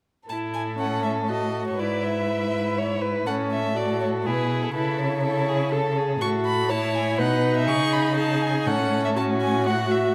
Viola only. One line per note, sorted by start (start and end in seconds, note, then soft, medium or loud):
0.30 0.76 E4 soft
0.79 1.31 C#4 soft
1.29 1.81 F#4 soft
1.80 3.27 E4 soft
3.28 3.76 C#4 soft
3.77 4.28 F#4 soft
4.26 4.74 E4 soft
4.75 5.22 E4 soft
5.24 5.74 E4 soft
5.72 5.99 A4 soft
5.97 6.23 G#4 soft
6.21 6.72 F#4 soft
6.70 7.20 E4 soft
7.19 8.68 D#4 medium
8.67 9.16 C#4 soft
9.16 9.68 C#4 soft
9.67 10.15 F#4 soft